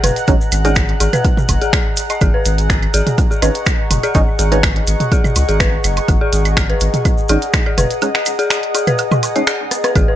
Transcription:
Already playing: ambient pad G#4 D#5 A#5 F#6, synth texture F#5
0.04 sub bass F#1, synth bell B4, closed hi-hat, mid tom, low woodblock, shaker
0.16 closed hi-hat, shaker
0.27 sub bass G#1, synth stab G#3 C#4 D#4, kick, closed hi-hat, high woodblock, shaker
0.41 shaker
0.52 sub bass G#1, closed hi-hat, claves, shaker
0.65 synth stab G#3 C#4 D#4, synth bell G#4, closed hi-hat, shaker
0.76 finger snap, kick, closed hi-hat, high woodblock, shaker
0.89 closed hi-hat
1.00 sub bass G#1, synth bell G#4, closed hi-hat, low woodblock, shaker
1.13 synth bell B4, closed hi-hat, mid tom, claves, shaker
1.24 kick, closed hi-hat, high woodblock, shaker
1.37 mid tom, shaker
1.49 sub bass F#1, kick, closed hi-hat, low woodblock, shaker
1.62 synth bell G#4, closed hi-hat, shaker
1.73 synth bell G#4, finger snap, kick, closed hi-hat, claves, high woodblock, shaker
1.97 closed hi-hat, shaker
2.10 synth bell D#5, closed hi-hat, low woodblock, shaker
2.21 sub bass G#1, synth bell G#4, kick, closed hi-hat, claves, high woodblock, shaker
2.34 synth bell B4
2.45 sub bass G#1, closed hi-hat, shaker
2.58 closed hi-hat, shaker
2.70 finger snap, kick, closed hi-hat, high woodblock, shaker
2.82 closed hi-hat, claves
2.94 sub bass G#1, synth bell G#4, closed hi-hat, shaker
3.07 closed hi-hat, mid tom, shaker
3.14 ambient pad C#6, kick, closed hi-hat, high woodblock, shaker
3.31 synth bell G#4, shaker
3.42 sub bass G#1, synth stab G#3 C#4 D#4, synth bell B4, closed hi-hat, claves, low woodblock, shaker
3.55 closed hi-hat, shaker
3.66 finger snap, kick, closed hi-hat, high woodblock, shaker
3.91 sub bass F#1, closed hi-hat, mid tom, low woodblock, shaker
4.03 synth bell G#4, closed hi-hat, claves, shaker
4.15 sub bass G#1, synth stab G#3 C#4 D#4, kick, closed hi-hat, high woodblock, shaker
4.39 sub bass G#1, synth bell G#4, closed hi-hat, shaker
4.52 synth stab G#3 C#4 D#4, synth bell B4, closed hi-hat, shaker
4.63 finger snap, kick, closed hi-hat, claves, high woodblock, shaker
4.76 closed hi-hat
4.87 sub bass G#1, closed hi-hat, shaker
5.00 closed hi-hat, mid tom, shaker
5.12 synth bell G#4, kick, closed hi-hat, high woodblock, shaker
5.24 mid tom, claves, shaker
5.36 sub bass C#2, closed hi-hat, low woodblock, shaker
5.49 sub bass G#1, synth bell G#4, closed hi-hat, shaker
5.60 synth bell B4, finger snap, kick, closed hi-hat, high woodblock, shaker
5.84 sub bass F#1, closed hi-hat, claves, shaker
5.97 closed hi-hat, low woodblock, shaker
6.08 sub bass G#1, kick, closed hi-hat, high woodblock, shaker
6.21 synth bell G#4
6.33 sub bass G#1, closed hi-hat, shaker
6.45 closed hi-hat, claves, shaker
6.57 synth bell G#4, finger snap, kick, closed hi-hat, high woodblock, shaker
6.70 synth bell B4, closed hi-hat
6.80 sub bass G#1, closed hi-hat, shaker
6.94 closed hi-hat, mid tom, shaker
7.01 ambient pad D#6, kick, closed hi-hat, claves, high woodblock, shaker
7.18 shaker
7.29 sub bass G#1, synth stab G#3 C#4 D#4, synth bell G#4, closed hi-hat, low woodblock, shaker
7.42 closed hi-hat, shaker
7.53 finger snap, kick, closed hi-hat, high woodblock, shaker
7.66 synth bell G#4, claves
7.78 sub bass F#1, synth bell B4, closed hi-hat, mid tom, low woodblock, shaker
7.91 closed hi-hat, shaker
8.02 synth stab G#3 C#4 D#4, closed hi-hat, high woodblock, shaker
8.15 finger snap, closed hi-hat
8.26 closed hi-hat, claves, shaker
8.39 synth bell G#4, closed hi-hat, shaker
8.50 finger snap, closed hi-hat, high woodblock, shaker
8.63 closed hi-hat
8.75 synth bell G#4, closed hi-hat, low woodblock, shaker
8.87 synth bell B4, closed hi-hat, mid tom, claves, shaker
8.98 closed hi-hat, high woodblock, shaker
9.11 mid tom, low woodblock, shaker
9.23 closed hi-hat, low woodblock, shaker
9.36 synth stab G#3 C#4 D#4, synth bell D#5, closed hi-hat, shaker
9.47 synth bell G#4, finger snap, closed hi-hat, claves, high woodblock, shaker
9.71 cross-stick, closed hi-hat, shaker
9.84 synth bell B4, cross-stick, closed hi-hat, low woodblock, shaker
9.95 sub bass G#1, synth bell G#4, synth texture F#5, kick, closed hi-hat, claves, high woodblock, shaker
10.08 synth bell B4

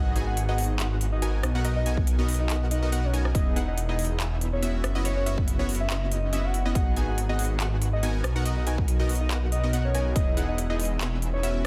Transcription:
Already playing: detuned saw bass G#1, supersaw synth B3 D#4 F#4 G#4 D#5, synth pluck D#5, soft synth lead F#5
0.16 supersaw synth B3 D#4 F#4 G#4 G#5, synth pluck G#5, closed hi-hat
0.27 soft synth lead F#5
0.37 closed hi-hat
0.48 supersaw synth B3 D#4 F#4 G#4 D#5, synth pluck D#5, soft synth lead F#5
0.58 open hi-hat
0.64 closed hi-hat
0.79 supersaw synth B3 D#4 F#4 G#4 F#5, synth pluck F#5, clap, closed hi-hat
1.01 closed hi-hat
1.12 soft synth lead D#5
1.22 supersaw synth B3 D#4 F#4 A#4 G#5, synth pluck G#5, closed hi-hat
1.43 detuned saw bass B1, cross-stick, closed hi-hat
1.55 supersaw synth B3 D#4 F#4 A#4 F#5, synth pluck F#5
1.65 supersaw synth B3 D#4 F#4 A#4 D#5, synth pluck D#5, closed hi-hat
1.76 soft synth lead D#5
1.86 supersaw synth B3 D#4 F#4 A#4 G#5, synth pluck G#5, closed hi-hat
1.97 kick
2.07 closed hi-hat
2.19 supersaw synth B3 D#4 F#4 A#4 D#5, synth pluck D#5
2.29 open hi-hat
2.34 closed hi-hat
2.40 soft synth lead D#5
2.50 supersaw synth B3 D#4 F#4 A#4 F#5, synth pluck F#5, clap, closed hi-hat
2.71 soft synth lead D#5, closed hi-hat
2.83 supersaw synth B3 D#4 F#4 A#4 D#5, synth pluck D#5
2.92 supersaw synth B3 D#4 F#4 A#4 F#5, synth pluck F#5, closed hi-hat
3.04 soft synth lead C#5
3.13 supersaw synth B3 D#4 F#4 A#4 G#5, synth pluck G#5, closed hi-hat
3.25 cross-stick
3.35 detuned saw bass E1, supersaw synth B3 D#4 E4 G#4 D#5, soft synth lead D#5, synth pluck D#5, kick, closed hi-hat
3.56 supersaw synth B3 D#4 E4 G#4 F#5, synth pluck F#5, closed hi-hat
3.68 soft synth lead D#5
3.78 closed hi-hat
3.89 supersaw synth B3 D#4 E4 G#4 D#5, soft synth lead D#5, synth pluck D#5
3.99 open hi-hat
4.05 closed hi-hat
4.20 supersaw synth B3 D#4 E4 G#4 E5, synth pluck G#5, clap, closed hi-hat
4.41 closed hi-hat
4.53 soft synth lead C#5
4.63 supersaw synth B3 C#4 E4 F#4 E5, synth pluck E5, closed hi-hat
4.84 detuned saw bass F#1, cross-stick, closed hi-hat
4.95 supersaw synth B3 C#4 E4 F#4 D#5, synth pluck D#5
5.05 supersaw synth B3 C#4 E4 F#4 C#5, synth pluck C#5, closed hi-hat
5.16 soft synth lead C#5
5.26 supersaw synth B3 C#4 E4 F#4 E5, synth pluck E5, closed hi-hat
5.38 kick
5.48 closed hi-hat
5.59 supersaw synth B3 C#4 E4 F#4 C#5, synth pluck C#5
5.69 open hi-hat
5.75 closed hi-hat
5.80 soft synth lead E5
5.90 supersaw synth B3 C#4 E4 F#4 D#5, synth pluck D#5, clap, closed hi-hat
6.11 soft synth lead D#5, closed hi-hat
6.33 supersaw synth B3 C#4 E4 F#4 E5, synth pluck E5, closed hi-hat
6.44 soft synth lead F#5
6.54 closed hi-hat
6.65 supersaw synth B3 C#4 E4 F#4 D#5, synth pluck D#5
6.75 detuned saw bass G#1, supersaw synth B3 D#4 F#4 G#4 D#5, synth pluck D#5, soft synth lead F#5, kick, closed hi-hat
6.96 supersaw synth B3 D#4 F#4 G#4 G#5, synth pluck G#5, closed hi-hat
7.08 soft synth lead F#5
7.18 closed hi-hat
7.29 supersaw synth B3 D#4 F#4 G#4 D#5, synth pluck D#5, soft synth lead F#5
7.39 open hi-hat
7.45 closed hi-hat
7.60 supersaw synth B3 D#4 F#4 G#4 F#5, synth pluck F#5, clap, closed hi-hat
7.82 closed hi-hat
7.93 soft synth lead D#5
8.03 supersaw synth B3 D#4 F#4 A#4 G#5, synth pluck G#5, closed hi-hat
8.24 detuned saw bass B1, cross-stick, closed hi-hat
8.36 supersaw synth B3 D#4 F#4 A#4 F#5, synth pluck F#5
8.46 supersaw synth B3 D#4 F#4 A#4 D#5, synth pluck D#5, closed hi-hat
8.57 soft synth lead D#5
8.67 supersaw synth B3 D#4 F#4 A#4 G#5, synth pluck G#5, closed hi-hat
8.78 kick
8.88 closed hi-hat
8.99 supersaw synth B3 D#4 F#4 A#4 D#5, synth pluck D#5
9.09 open hi-hat
9.15 closed hi-hat
9.21 soft synth lead D#5
9.30 supersaw synth B3 D#4 F#4 A#4 F#5, synth pluck F#5, clap, closed hi-hat
9.52 soft synth lead D#5, closed hi-hat
9.63 supersaw synth B3 D#4 F#4 A#4 D#5, synth pluck D#5
9.73 supersaw synth B3 D#4 F#4 A#4 F#5, synth pluck F#5, closed hi-hat
9.85 soft synth lead C#5
9.95 supersaw synth B3 D#4 F#4 A#4 G#5, synth pluck G#5, closed hi-hat
10.16 detuned saw bass E1, supersaw synth B3 D#4 E4 G#4 D#5, soft synth lead D#5, synth pluck D#5, kick, closed hi-hat
10.37 supersaw synth B3 D#4 E4 G#4 F#5, synth pluck F#5, closed hi-hat
10.48 soft synth lead D#5
10.58 closed hi-hat
10.70 supersaw synth B3 D#4 E4 G#4 D#5, soft synth lead D#5, synth pluck D#5
10.80 open hi-hat
10.85 closed hi-hat
11.01 supersaw synth B3 D#4 E4 G#4 E5, synth pluck G#5, clap, closed hi-hat
11.22 closed hi-hat
11.34 soft synth lead C#5
11.43 supersaw synth B3 C#4 E4 F#4 E5, synth pluck E5, closed hi-hat

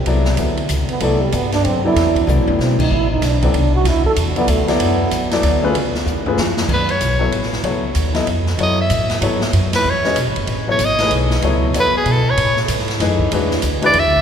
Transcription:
0.06 upright bass C2, grand piano F#3 B3 E4 A4 D5, ride
0.25 snare
0.37 upright bass D2, grand piano F#3 B3 E4 A4 E5, hi-hat pedal, ride
0.57 ride
0.69 upright bass C#2, hi-hat pedal, ride
0.89 trombone B3, muted upright bass stroke, ride
1.00 upright bass C2, grand piano F#3 B3 E4 A4 D5, trombone A3, ride
1.21 trombone G3
1.32 upright bass G2, trombone B3, hi-hat pedal, ride
1.52 trombone D4, snare, ride
1.65 upright bass F#2, trombone C4, ride
1.84 grand piano F#3 B3 E4 A4 D5, trombone E4
1.96 upright bass E2, snare, ride
2.16 kick, ride
2.27 upright bass C2, grand piano F#3 B3 E4 A4 D5, hi-hat pedal, high tom
2.38 upright bass A1
2.47 upright bass F#1, high tom
2.59 upright bass B1, trombone C4, snare
2.79 trombone D#4, kick, crash
2.91 upright bass A1, trombone E4
3.11 trombone D#4
3.22 upright bass B1, trombone D4, snare, hi-hat pedal, ride
3.42 grand piano F#3 B3 E4 A4 D5, trombone C4, kick, ride
3.54 upright bass C2, trombone D4, ride
3.75 trombone F#4
3.84 upright bass D2, trombone E4, snare, ride
4.04 trombone A4, muted upright bass stroke, kick
4.16 upright bass E2, hi-hat pedal, ride
4.36 grand piano F#3 B3 E4 A4 D5, trombone B3, ride
4.48 upright bass D2, trombone A3, hi-hat pedal, ride
4.67 grand piano F#3 B3 E4 A4 D5, trombone B3, snare, ride
4.80 upright bass F#2, ride
5.11 upright bass E2, hi-hat pedal, ride
5.31 grand piano F#3 B3 E4 A4 D5, snare, ride
5.43 upright bass D2, ride
5.62 grand piano A3 C#4 F4 G#4 B4
5.75 upright bass C#2, ride
5.94 muted upright bass stroke, snare
6.06 upright bass D#2, hi-hat pedal
6.26 grand piano A3 C#4 F4 G#4 B4, floor tom
6.37 upright bass F2, snare
6.57 snare
6.69 upright bass F#2, kick, crash
6.74 soprano saxophone B4
6.89 soprano saxophone C#5, ride
7.01 upright bass B1, hi-hat pedal, ride
7.19 grand piano F#3 B3 E4 A4 C#5
7.32 upright bass A1, ride
7.43 snare
7.53 snare
7.64 upright bass C#2, grand piano F#3 B3 E4 A4 C#5, ride
7.95 upright bass D#2, hi-hat pedal, ride
8.13 grand piano F#3 B3 E4 A4 D#5, snare, ride
8.27 upright bass F2, ride
8.46 snare
8.58 upright bass F#2, grand piano F#3 B3 E4 A4 C#5, ride
8.63 soprano saxophone D#5
8.81 soprano saxophone E5
8.90 upright bass A2, hi-hat pedal, ride
9.10 snare, ride
9.21 upright bass G#2, grand piano F#3 B3 E4 A4 C#5, ride
9.41 snare
9.53 upright bass F#2, ride
9.73 soprano saxophone B4, snare, ride
9.85 upright bass E2
9.90 soprano saxophone C#5
10.04 grand piano G#3 C#4 F#4 B4 D#5, snare
10.16 upright bass B1, hi-hat pedal, ride
10.27 upright bass A1
10.36 upright bass F#1, ride
10.47 upright bass A1, ride
10.68 grand piano F#3 B3 E4 A4 C#5, soprano saxophone C#5
10.79 upright bass G#1, hi-hat pedal, ride
10.85 soprano saxophone D#5
10.99 grand piano E3 A3 D#4 G#4 B4, snare, ride
11.11 upright bass B1, ride
11.30 snare
11.42 upright bass C#2, grand piano F#3 B3 E4 A4 C#5, ride
11.73 upright bass E2, grand piano F#3 B3 E4 A4 C#5, hi-hat pedal, ride
11.80 soprano saxophone B4
11.94 soprano saxophone G#4, muted upright bass stroke
12.05 upright bass B2, ride
12.12 soprano saxophone A4
12.30 soprano saxophone C#5
12.37 upright bass A2, ride
12.57 snare
12.68 upright bass G#2, hi-hat pedal, ride
12.79 snare
12.88 snare, ride
13.00 upright bass F#2, grand piano E3 A3 D#4 G#4 B4, snare, ride
13.19 kick
13.31 upright bass E2, grand piano G#3 D4 E4 F#4 B4, ride
13.51 snare
13.62 upright bass D2, hi-hat pedal, ride
13.82 grand piano G#3 D4 E4 F#4 B4, ride
13.86 soprano saxophone D5
13.93 upright bass E2, ride
13.99 soprano saxophone E5
14.06 upright bass D2
14.16 upright bass B1

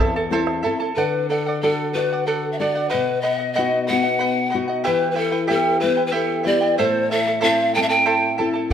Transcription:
Already playing: nylon-string guitar C4 E4 A4
0.00 nylon-string guitar E2, charango E4 A4 E5 A5
0.16 charango E4 A4 A5
0.30 nylon-string guitar C4 E4 A4, charango E4 A4 C5 E5 A5
0.47 bombo rim
0.63 nylon-string guitar C4 E4 A4, charango E4 A4 E5 A5
0.80 charango E4 A4 A5
0.96 nylon-string guitar D3, charango A4 D5 F#5, pan flute B4
1.29 pan flute A4, charango A4 D5 F#5
1.46 charango D5 F#5
1.61 nylon-string guitar D4 F#4 A4, pan flute A4, charango A4 D5 F#5
1.93 nylon-string guitar D4 F#4 A4, charango A4 D5, pan flute B4
1.97 charango F#5
2.13 charango D5 F#5
2.26 pan flute A4, charango A4 D5 F#5
2.51 pan flute E5
2.59 nylon-string guitar D4 F#4 A4, charango A4 D5 F#5, pan flute D5
2.75 charango D5 F#5
2.89 pan flute B4, charango B4 D#5 F#5
2.94 nylon-string guitar B2
3.21 charango B4 D#5 F#5, pan flute D#5
3.39 charango D#5 F#5
3.53 charango B4 D#5 F#5, pan flute D#5
3.58 nylon-string guitar B3 D#4 F#4
3.87 nylon-string guitar B3, charango B4 D#5 F#5, pan flute F#5
3.92 nylon-string guitar D#4 F#4
4.03 charango D#5 F#5
4.19 charango B4 D#5 F#5
4.50 nylon-string guitar B3, charango B4 D#5 F#5
4.55 nylon-string guitar D#4 F#4
4.68 charango D#5 F#5
4.84 nylon-string guitar E3, charango E4 G4 B4 E5 G5, pan flute B4
5.11 pan flute B4
5.15 charango E4 B4 E5 G5, pan flute A4
5.32 charango E4 B4 G5
5.47 nylon-string guitar B3 E4 G4, charango E4 G4 B4 E5 G5, pan flute A4
5.80 nylon-string guitar B3 E4 G4, charango E4 B4 E5 G5, pan flute B4
5.97 charango E4 B4 G5
6.06 pan flute B4
6.12 charango E4 G4 B4 E5 G5, pan flute A4
6.43 nylon-string guitar B3 E4 G4, charango E4 B4 E5 G5, pan flute D5
6.61 charango E4 B4 G5
6.77 nylon-string guitar A2, charango E4 A4 C5 E5 A5, pan flute C5
7.11 charango E4 A4 E5 A5, pan flute E5
7.27 charango E4 A4 A5
7.41 nylon-string guitar C4 E4 A4, charango E4 A4 C5 E5 A5, pan flute E5
7.74 nylon-string guitar C4 E4 A4, charango E4 A4 E5 A5, pan flute G5
7.82 pan flute E5
7.89 charango E4 A4 A5, pan flute G5
8.05 charango E4 A4 C5 E5 A5
8.38 nylon-string guitar C4 E4 A4, charango E4 A4 E5 A5
8.53 charango E4 A4 A5

